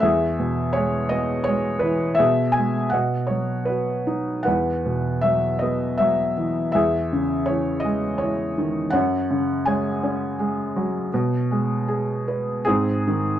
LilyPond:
<<
  \new Staff \with { instrumentName = "Felt piano" } { \time 3/4 \key e \major \tempo 4 = 81 << { e''4 cis''8 dis''8 cis''8 b'8 | e''8 gis''8 fis''8 cis''8 b'4 | fis''4 e''8 dis''8 e''4 | e''4 cis''8 dis''8 cis''4 |
fis''4 gis''2~ | gis''2 gis'4 | } \\ { gis'4. r4. | gis'4 dis''4. r8 | b'4. r4. | gis'4. r4. |
cis''4 cis''2~ | cis''2 bis4 | } >> }
  \new Staff \with { instrumentName = "Felt piano" } { \clef bass \time 3/4 \key e \major e,8 b,8 gis8 b8 gis8 e8 | b,8 gis8 b,8 fis8 fis'8 dis'8 | e,8 b,8 fis8 b8 fis8 e8 | e,8 cis8 e8 gis8 e8 dis8 |
fis,8 cis8 gis8 cis'8 gis8 fis8 | b,8 gis8 gis'8 b'8 gis,8 dis8 | }
>>